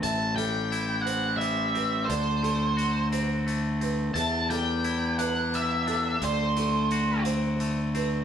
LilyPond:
<<
  \new Staff \with { instrumentName = "Lead electric guitar" } { \time 6/8 \key d \mixolydian \tempo 4. = 58 a''8 g''4 fis''8 e''4 | c''4. r4. | a''8 g''4 fis''8 e''4 | c''4. r4. | }
  \new Staff \with { instrumentName = "Felt piano" } { \time 6/8 \key d \mixolydian e''8 a'4 c''4 b'8 | d''8 a'4 c''4 b'8 | e''8 a'4 b'4 a'8 | d''8 a'4 c''4 b'8 | }
  \new Staff \with { instrumentName = "Clean electric guitar" } { \time 6/8 \key d \mixolydian a,8 g8 e'8 c'8 g8 c'8 | d8 a8 fis'8 c'8 a8 c'8 | e,8 g8 e'8 d'8 g8 d'8 | d8 a8 fis'8 c'8 a8 c'8 | }
  \new Staff \with { instrumentName = "Fingered electric bass" } { \clef bass \time 6/8 \key d \mixolydian a,,2. | d,2. | e,2. | d,2. | }
  \new DrumStaff \with { instrumentName = "Drums" } \drummode { \time 6/8 hh8 hh8 hh8 hh8 hh8 hh8 | hh8 hh8 hh8 hh8 hh8 hh8 | hh8 hh8 hh8 hh8 hh8 hh8 | hh8 hh8 hh8 hh8 hh8 hh8 | }
>>